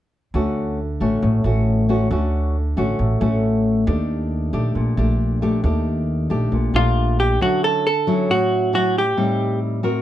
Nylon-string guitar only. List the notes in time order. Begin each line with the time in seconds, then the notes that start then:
0.34 D3 A3 C#4 F#4
1.01 A3 C#4 F#4
1.23 A2
1.45 A3 C#4 F#4
1.89 A3 C#4 F#4
2.11 D3 A3 C#4 F#4
2.77 A3 C#4 F#4
2.99 A2
3.21 A3 C#4 F#4
3.87 D#3 A3 D4 G4
4.53 A3 D4 G4
4.75 A#2
4.98 A3 D4 G4
5.42 A3 D4 G4
5.64 D#3 A3 D4 G4
6.30 A3 D4 G4
6.53 A#2
6.75 A3 D4 G4
7.41 D3 F#3 C#4 E4
8.07 F#3 C#4 E4
8.29 A2
8.73 F#3 C#4 E4
9.17 A2 G3 C4 D#4
9.83 C4 F#4 A#4